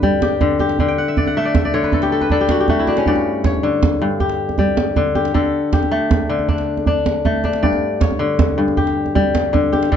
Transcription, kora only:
0.00 0.84 G2 medium
0.00 0.40 D3 medium
0.00 0.46 G3 medium
0.00 0.13 A3 medium
0.00 0.88 B4 medium
0.22 0.60 G4 medium
0.41 0.79 D3 medium
0.60 1.04 G4 medium
0.80 1.73 D3 medium
0.88 1.33 G5 medium
0.98 1.27 F#5 medium
1.08 1.36 E5 medium
1.18 1.45 D5 medium
1.27 2.09 F#5 medium
1.37 2.69 A3 medium
1.37 1.54 E5 medium
1.45 1.65 D5 medium
1.55 2.58 E5 medium
1.65 2.76 D5 medium
1.74 3.11 D3 medium
1.74 2.37 C#5 medium
1.84 2.21 B4 medium
1.93 2.12 A4 medium
2.03 2.40 G4 medium
2.12 2.31 A4 medium
2.21 3.44 B4 medium
2.31 2.88 D4 medium
2.31 3.64 A4 medium
2.41 2.60 G4 medium
2.51 2.69 F#4 medium
2.60 4.02 G4 medium
2.69 4.69 A3 medium
2.69 3.13 F#4 medium
2.79 4.36 E4 medium
2.88 3.51 D4 medium
2.98 3.69 C#4 medium
3.07 4.00 G2 medium
3.07 4.18 D5 medium
3.45 4.60 C#5 medium
3.63 4.95 D3 medium
4.02 5.39 G2 medium
4.20 5.15 G4 medium
4.59 5.01 G3 medium
4.97 5.33 D3 medium
5.15 5.73 G4 medium
5.34 6.28 D3 medium
5.34 6.66 A4 medium
5.73 7.14 G4 medium
5.92 7.25 A3 medium
6.29 7.68 D3 medium
6.49 6.87 D4 medium
6.87 7.44 D4 medium
7.25 9.25 A3 medium
7.45 8.07 D4 medium
7.63 8.57 G2 medium
7.63 8.74 D5 medium
8.01 9.15 C#5 medium
8.19 9.52 D3 medium
8.58 9.96 G2 medium
8.77 9.72 G4 medium
9.15 9.59 G3 medium
9.53 9.91 D3 medium
9.73 9.96 G4 medium
9.92 9.96 D3 medium
9.92 9.96 A4 medium

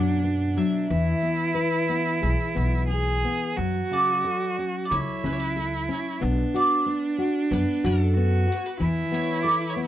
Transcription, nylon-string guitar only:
0.00 0.86 B2 medium
0.00 0.22 F#3 medium
0.24 0.56 B3 soft
0.57 0.89 F#3 soft
0.90 3.54 E3 medium
1.23 1.55 B3 soft
1.54 1.87 B4 soft
1.89 2.21 B3 soft
2.22 2.55 G#4 soft
2.55 2.89 B3 soft
2.90 3.23 G#4 soft
3.24 3.57 B3 soft
3.57 6.16 F#3 medium
3.91 4.24 C#3 soft
4.24 4.57 A4 soft
4.58 4.90 C#4 soft
4.91 5.23 A4 soft
5.24 5.55 C#4 soft
5.56 5.88 A4 soft
5.89 6.20 C#4 soft
6.21 6.85 B3 medium
6.54 6.85 F#4 soft
6.86 7.18 B3 soft
7.18 7.50 F#4 soft
7.51 7.83 B3 medium
7.84 8.15 F#4 medium
8.17 8.47 B3 soft
8.47 8.79 F#4 soft
8.80 9.87 E3 medium
9.12 9.43 B3 medium
9.44 9.76 A4 medium
9.76 9.87 B3 soft

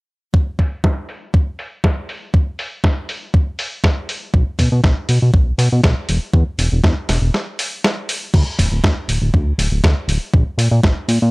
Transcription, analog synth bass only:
4.34 4.44 B1 medium
4.59 4.69 B2 medium
4.72 4.81 B2 loud
4.84 4.94 B1 medium
5.09 5.19 B2 medium
5.22 5.31 B2 medium
5.34 5.53 B1 medium
5.58 5.69 B2 loud
5.72 5.81 B2 medium
5.83 5.94 B1 loud
6.09 6.19 E1 medium
6.33 6.44 E2 medium
6.59 6.69 E1 medium
6.72 6.81 E1 medium
6.84 6.94 E2 medium
7.09 7.19 E1 medium
7.22 7.31 E1 medium
8.34 8.44 D2 loud
8.59 8.69 D1 medium
8.72 8.81 D1 medium
8.84 8.94 D2 medium
9.08 9.19 D1 medium
9.22 9.31 D1 medium
9.34 9.53 D2 medium
9.58 9.69 D1 loud
9.72 9.81 D1 medium
9.84 9.94 D2 loud
10.08 10.19 D1 medium
10.33 10.44 A#1 medium
10.58 10.69 A#2 medium
10.71 10.81 A#2 loud
10.83 10.94 A#1 medium
11.08 11.19 A#2 medium
11.22 11.31 A#2 medium

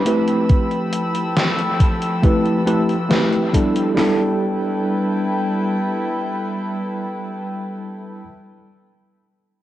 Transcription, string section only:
0.00 3.93 B5 medium
0.06 3.94 F3 medium
0.06 3.94 A4 medium
0.06 3.94 G5 medium
0.06 3.94 E6 medium
3.97 8.21 G3 medium
3.97 8.21 E4 medium
3.97 8.21 A4 medium
3.97 8.21 B4 medium
3.97 8.21 G5 medium

